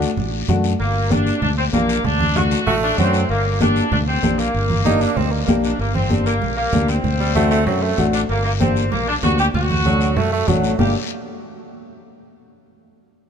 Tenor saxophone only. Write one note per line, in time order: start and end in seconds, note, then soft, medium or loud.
2.67 2.99 A3 loud
2.98 3.21 F#3 loud
4.85 5.03 D#4 loud
5.01 5.18 D4 medium
5.17 5.33 C4 medium
5.32 5.45 A#3 medium
5.46 5.77 A#3 medium
7.20 7.34 G3 loud
7.36 7.50 A3 loud
7.51 7.66 A3 loud
7.67 7.84 F#3 medium
7.82 8.06 A3 medium
9.85 10.18 F#3 medium
10.17 10.32 A3 loud
10.32 10.49 A3 loud
10.48 10.78 F#3 medium
10.79 10.93 A#3 medium